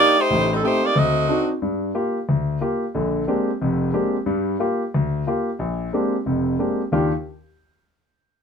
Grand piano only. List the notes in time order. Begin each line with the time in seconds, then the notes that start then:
Already playing: D4 D#4 G4
0.30 A1 A2
0.62 A3 C4 G4
0.96 D2
1.28 C4 D4 D#4 F#4
1.62 G2
1.95 A#3 F4 G4
2.29 D2
2.61 A#3 F4 G4
2.95 A#1 D3
3.27 G#3 A#3 C4 D4 G4
3.61 F1 F2
3.93 G#3 A#3 C4 D4 G4
4.26 G2 G3
4.59 A#3 F4 G4
4.94 D2
5.27 A#3 F4 G4
5.59 A#1
5.93 G#3 A#3 C4 D4 G4
6.26 F1 F2
6.59 G#3 A#3 C4 D4 G4
6.92 D#2 D#3 D4 F4 G4